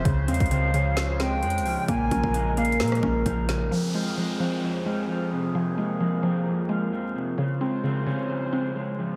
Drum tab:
HH |x-----------x--x--x--x--x-----------x-----------x-----------------------x---x---x---o-----------|x-----------x-----------x-----------x---x---x---x---x---x---------------x-----------x-----------|------------------------------------------------------------------------------------------------|------------------------------------------------------------------------------------------------|
SD |------------------------------------------------o-----------o-----------------------------------|------------------------------------------------o-----r-----------------------------o-----------|------------------------------------------------------------------------------------------------|------------------------------------------------------------------------------------------------|
BD |o-----------------o-----------------------------------------------------------------------------|o-----------o-----o-----------------------------------------o-----------o-----------------------|------------------------------------------------------------------------------------------------|------------------------------------------------------------------------------------------------|

HH |------------------------------------------------------------------------------------------------|
SD |------------------------------------------------------------------------------------------------|
BD |------------------------------------------------------------------------------------------------|